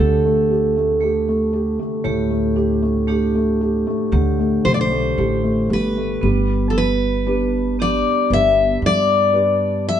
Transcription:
0.00 1.76 D2 medium
0.00 4.09 D3 medium
0.00 0.25 A3 medium
0.00 0.99 A3 medium
0.00 2.55 D4 medium
0.00 0.50 G4 medium
0.00 2.03 G4 medium
0.00 5.16 A4 medium
0.25 0.75 A3 soft
0.50 1.01 G4 soft
0.76 1.27 A3 medium
1.01 2.03 A3 medium
1.01 1.52 G4 medium
1.28 1.78 A3 soft
1.53 2.55 G4 medium
1.79 2.29 A3 soft
2.04 3.83 D2 medium
2.04 6.18 A2 medium
2.04 3.06 A3 medium
2.04 3.07 G4 medium
2.30 2.81 A3 soft
2.56 3.06 D4 medium
2.56 3.08 G4 medium
2.82 3.34 A3 medium
3.07 5.16 A3 medium
3.07 6.33 D4 medium
3.07 4.11 G4 medium
3.07 3.60 G4 medium
3.35 3.85 A3 medium
3.61 4.63 G4 medium
3.87 4.38 A3 medium
4.12 4.58 D2 loud
4.12 6.19 D3 medium
4.12 6.33 G4 medium
4.39 4.90 A3 soft
4.65 5.14 B1 medium
4.65 5.17 G4 medium
4.65 4.72 C5 medium
4.74 4.80 D5 medium
4.81 5.73 C5 medium
4.92 5.42 A3 medium
5.17 5.66 A1 medium
5.17 6.33 A3 medium
5.17 5.68 G4 medium
5.44 5.96 A3 soft
5.69 6.18 G1 medium
5.69 6.20 G4 medium
5.73 6.72 B4 medium
5.97 6.22 A3 soft
6.21 8.02 G1 medium
6.21 10.00 G3 medium
6.21 7.26 B3 medium
6.70 6.76 A4 medium
6.78 7.76 B4 medium
7.26 7.78 B3 medium
7.26 8.27 D4 soft
7.26 8.28 G4 soft
7.26 8.28 B4 medium
7.79 10.00 B3 medium
7.79 10.00 D4 medium
7.79 10.00 G4 medium
7.79 8.33 D5 medium
8.30 8.75 G1 medium
8.30 9.31 D4 soft
8.30 9.31 G4 soft
8.30 9.31 B4 medium
8.30 8.85 E5 medium
8.82 10.00 G2 medium
8.86 9.88 D5 medium
9.33 10.00 D4 medium
9.33 10.00 G4 soft
9.33 10.00 B4 medium
9.89 10.00 E5 loud

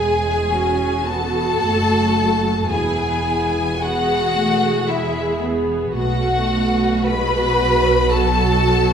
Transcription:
0.00 1.57 E1 soft
0.00 1.57 E2 soft
0.00 0.50 G#3 soft
0.00 0.47 G#4 soft
0.00 1.06 G#4 medium
0.00 1.03 G#5 medium
0.50 1.05 C#4 soft
0.50 2.70 F#4 soft
1.06 1.61 B3 soft
1.06 2.70 A4 medium
1.06 2.70 A5 medium
1.60 2.68 F#1 medium
1.60 2.68 F#2 medium
1.60 2.70 A3 soft
2.70 5.91 E1 soft
2.70 5.91 E2 soft
2.70 3.79 B3 soft
2.70 3.82 E4 soft
2.70 3.79 G#4 medium
2.70 3.79 G#5 medium
3.81 4.35 B3 soft
3.81 4.87 F#4 medium
3.81 4.87 G#4 soft
3.81 4.89 F#5 medium
4.36 4.88 A3 medium
4.88 5.41 G#3 medium
4.88 5.42 E4 medium
4.88 5.94 G#4 medium
4.88 5.42 E5 medium
5.43 5.96 B3 soft
5.95 8.93 B1 medium
5.95 8.93 B2 medium
5.95 7.07 A3 medium
5.95 7.03 F#4 medium
5.95 8.93 F#4 medium
5.95 7.03 F#5 medium
7.06 7.61 G#3 medium
7.06 8.13 B4 medium
7.06 8.11 B5 medium
7.61 8.13 F#3 medium
8.11 8.64 F#3 medium
8.11 8.93 A4 medium
8.11 8.93 A5 medium
8.65 8.93 F#3 medium

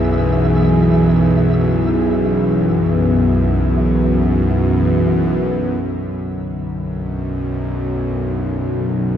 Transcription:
0.00 5.81 B1 medium
0.00 5.81 F#2 medium
0.00 5.84 E3 medium
0.00 9.17 B3 medium
0.00 8.11 G#4 medium
0.00 5.84 E5 medium
5.81 9.17 B1 medium
5.81 9.17 F#2 medium
5.81 9.17 D3 medium
6.45 9.17 F#4 medium

